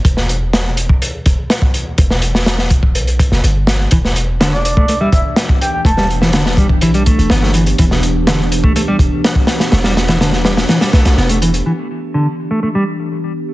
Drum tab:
HH |x-x-x-x-x-x-x-x-|x-x-x-x-xxx-x-x-|x-x-x-x-x-x-x-x-|x-x-x-x-xxxxx-xx|
SD |-o--o-------o---|-o-ooo-----o--o-|-o--o-------o---|-o-ooo------oo--|
BD |o------o--o--o--|o-----oo--o-----|o------o--o--o--|o-----oo--o-----|

HH |x-x-x-x-x-x-x-xx|xxxxx-xxxxxx-xxx|----------------|
SD |-o--o-------o-oo|ooooooooooooo---|----------------|
BD |o------o--o--o--|----------------|----------------|